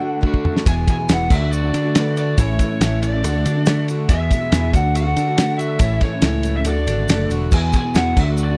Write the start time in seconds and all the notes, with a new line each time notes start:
Already playing: D3 A3 D4 F#4 A4 F#5
0.00 D3 A3 D4 F#4
0.21 D3 A3 D4 F#4, kick
0.27 F#4
0.34 kick
0.45 mid tom
0.52 A3 D4 F#4
0.57 snare
0.64 E1 E2 B2 E3 G#3 B3 G#4 B4 E5, kick, ride, shaker
0.68 G#5
0.86 B2 E3 G#3 B3 G#4, kick, ride, shaker
0.91 G#5
0.99 E3 G#3 B3 G#4
1.08 E1 E2 B2 E3 G#3 B3 G#4 B4 E5, snare, ride, shaker
1.13 F#5
1.29 D2 D3 A3 D4 F#4 A4 E5 F#5, kick, crash, shaker
1.33 D5
1.40 A3 D4 F#4
1.52 F#4 D5, shaker
1.62 A3 D4 F#4
1.73 D3 A3 D4 F#4, ride, shaker
1.84 A3 D4 F#4
1.95 D3 A3 D4 F#4 A4 B4, snare, ride, shaker
2.17 F#4 D5, ride, shaker
2.36 A1 A2 E3 A3 C#4 E4 A4 C#5, kick, ride, shaker
2.59 E3 A3 C#4 E4, kick, ride, shaker
2.70 A3 C#4 E4
2.80 A1 A2 E3 A3 C#4 E4 A4 E5, snare, ride, shaker
3.01 E3 A3 C#4 E4 D5, ride, shaker
3.13 A3 C#4 E4
3.23 D2 D3 A3 D4 F#4 A4 D5 F#5, ride, shaker
3.34 A3 D4 F#4
3.44 D3 A3 D4 F#4, ride, shaker
3.55 A3 D4 F#4
3.66 D3 A3 D4 F#4 A4 D5, snare, ride, shaker
3.88 F#4, ride, shaker
4.08 E2 B2 E3 G#3 B3 G#4 B4 E5, kick, ride, shaker
4.31 B2 E3 G#3 B3 G#4, kick, ride, shaker
4.41 E3 G#3 B3 G#4
4.49 E2 B2 E3 G#3 B3 G#4 B4 E5, snare, ride
4.53 shaker
4.72 D2 D3 A3 D4 F#4 A4 D5 F#5, kick, ride, shaker
4.83 A3 D4 F#4
4.95 F#4 F#5, ride, shaker
5.05 A3 D4 F#4
5.16 D3 A3 D4 F#4, ride, shaker
5.28 A3 D4 F#4
5.36 D3 A3 D4 F#4 A4 D5, snare, ride, shaker
5.58 F#4 E5, ride, shaker
5.78 A1 A2 E3 A3 C#4 E4 A4 C#5, kick, ride, shaker
5.83 E4 C#5
6.01 E3 A3 C#4 E4 C#5, kick, ride
6.13 A3 C#4 E4
6.22 C#2 A2 E3 A3 C#4 E4 A4 C#5, snare, ride, shaker
6.43 E3, ride, shaker
6.47 A3 C#4 E4
6.56 A3 C#4 E4 E5
6.65 D2 D3 A3 D4 F#4 A4 D5 F#5, ride, shaker
6.69 D5
6.76 A3 D4 F#4
6.87 G#1 D3 A3 D4 F#4, ride, shaker
6.99 A3 D4 F#4
7.08 F#1 D3 A3 D4 F#4 A4 D5, snare, ride, shaker
7.30 E1 F#4, ride, shaker
7.51 E2 B2 E3 G#3 B3 G#4 B4 E5 G#5, kick, crash, shaker
7.73 B2 E3 G#3 B3 G#4 G#5, kick, ride, shaker
7.83 E3 G#3 B3 G#4
7.94 E2 B2 E3 G#3 B3 G#4 B4 E5 F#5, snare, ride, shaker
8.15 D2 D3 A3 D4 F#4 A4 D5 F#5, kick, crash, shaker
8.19 D4 F#4 E5
8.28 A3 D4 F#4
8.37 F#4, shaker
8.44 D5
8.49 A3 D4 F#4